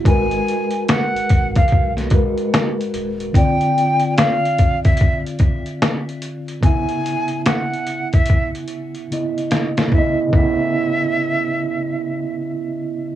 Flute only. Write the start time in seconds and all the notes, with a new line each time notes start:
0.07 G#5
0.89 F#5
1.56 F5
3.35 G5
4.17 F5
4.84 E5
6.64 G#5
7.46 F#5
8.13 E5
9.93 E5
10.34 E5